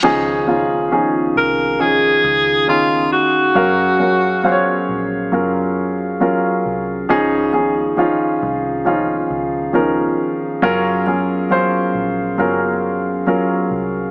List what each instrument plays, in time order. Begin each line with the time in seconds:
0.03 fingered electric bass C#2, grand piano C#3 F3 C#4 D#4 G#4, pipe organ D#3 C#4 D#4 G#4 F5
0.47 grand piano F3 C#4 D#4 F4
0.91 grand piano F3 C#4 D#4 G#4
1.36 fingered electric bass C2, alto saxophone A#4
1.79 grand piano F3 C#4 D#4 G#4, alto saxophone G#4
2.24 fingered electric bass C#2
2.67 grand piano D#3 C#4 D#4 G#4, alto saxophone F4
3.12 alto saxophone F#4
3.55 fingered electric bass F#1, grand piano F#3 C#4 A#4 F5, pipe organ F#3 G#4 A#4
3.99 grand piano F#3 C#4 A#4 F5
4.44 grand piano F#3 C#4 C5 F5
4.52 grand piano C#5
4.89 fingered electric bass A#1
5.32 fingered electric bass F#1, grand piano F#3 C#4 F4 A#4
6.20 grand piano F#3 C#4 F4 A#4
6.66 fingered electric bass C2
7.09 fingered electric bass C#2, grand piano C#3 F3 C#4 D#4 G#4, pipe organ D#3 D#4
7.52 grand piano F3 C#4 D#4 G#4
7.97 grand piano F3 C#4 D#4 F4
8.43 fingered electric bass C2
8.85 grand piano F3 C#4 D#4 F4
9.30 fingered electric bass C#2
9.73 grand piano F3 C#4 D#4 A#4
10.62 fingered electric bass F#1, grand piano F#3 C#4 F4 A#4, pipe organ F#3 A#4
11.06 grand piano F#3 C#4 F4 G#4
11.50 grand piano F#3 C#4 F4 C5
11.95 fingered electric bass A#1
12.38 fingered electric bass F#1, grand piano F#3 C#4 F4 A#4
13.27 grand piano F#3 C#4 F4 A#4
13.71 fingered electric bass C2